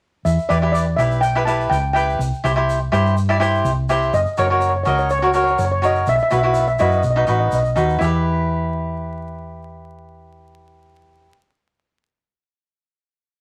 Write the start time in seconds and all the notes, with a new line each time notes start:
0.25 E2 E5, shaker
0.39 shaker
0.49 E2 E4 G4 B4 D5, shaker
0.62 E4 G4 B4
0.72 D5, shaker
0.97 B1 E4 G4 B4 E5, shaker
1.11 shaker
1.21 G5, shaker
1.35 E4 G4 B4, shaker
1.45 E4 G4 B4 A5, shaker
1.61 shaker
1.70 C#2 G5, shaker
1.93 E4 G4 B4 G5, shaker
2.10 shaker
2.19 C2, shaker
2.34 shaker
2.44 C2 E4 G4 C5, shaker
2.56 E4 G4 C5
2.70 shaker
2.92 G2 E4 G4 C5, shaker
3.06 shaker
3.17 shaker
3.29 E4 G4 D5, shaker
3.40 E4 G4 C5, shaker
3.55 shaker
3.64 C2, shaker
3.89 E4 G4 C5, shaker
4.02 shaker
4.13 F#1 D#5, shaker
4.26 shaker
4.37 F#1 F#4 A#4 C#5, shaker
4.47 F#4 A#4 C#5
4.52 C#5
4.60 C#5, shaker
4.69 C#5
4.76 C#5
4.83 C#2 F#4 A#4 C#5 D#5, shaker
4.90 C#5
4.98 C#5, shaker
5.10 C#5, shaker
5.19 F#4 A#4 C#5, shaker
5.23 C#5
5.33 F#4 A#4 C#5, shaker
5.44 C#5, shaker
5.51 C#5
5.58 F#1 C#5, shaker
5.65 C#5
5.71 C#5
5.82 F#4 A#4 C#5 D#5, shaker
5.95 shaker
6.06 B1 E5, shaker
6.16 E5, shaker
6.23 E5
6.31 B1 E4 F#4 B4 E5, shaker
6.39 E5
6.43 E4 F#4 B4 E5
6.53 E5, shaker
6.60 E5
6.67 E5, shaker
6.79 F#2 E4 F#4 B4 D#5, shaker
6.89 D#5, shaker
6.96 D#5
7.03 B1 D#5, shaker
7.10 D#5
7.16 D#4 F#4 B4 D#5
7.25 A1 D#4 F#4 B4 D#5, shaker
7.33 D#5
7.40 D#5
7.48 D#5, shaker
7.52 B1 D#5
7.63 D#5, shaker
7.75 D#2 D#4 F#4 B4, shaker
7.89 shaker
7.98 E2 E4 G4 E5, shaker
8.04 B4